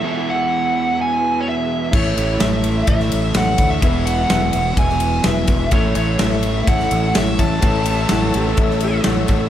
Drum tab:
CC |----------------|x---------------|----------------|----------------|
RD |----------------|--x-x-x-x-x-x-x-|x-x-x-x-x-x-x-x-|x-x-x-x-x-x-x-x-|
SD |----------------|----o----o--o---|----o----o--o---|----o----o--o---|
BD |----------------|o-------o-----o-|o-------o-----o-|o-------o-----o-|

CC |----------------|
RD |x-x-x-x-x-x-x-x-|
SD |----o----o--o---|
BD |o-------o-----o-|